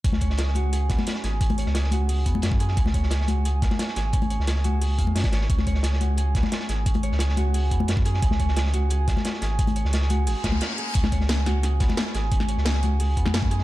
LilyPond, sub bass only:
\new Staff \with { instrumentName = "Sub bass" } { \clef bass \time 4/4 \key fis \mixolydian \tempo 4 = 176 cis,8. cis,2 r8. gis,,8~ | gis,,8. cis,4.~ cis,16 e,8 fis,4 | cis,8. cis,2 r8. gis,,8~ | gis,,8. cis,4.~ cis,16 e,8 fis,16 r16 gis,,8 |
cis,8. cis,2 r8. gis,,8~ | gis,,8. cis,4.~ cis,16 e,8 fis,4 | cis,8. cis,2 r8. gis,,8~ | gis,,8. cis,4~ cis,16 gis,,16 r16 cis,8 r4 |
cis,8. cis,2 r8. gis,,8~ | gis,,8. cis,4.~ cis,16 e,8 fis,4 | }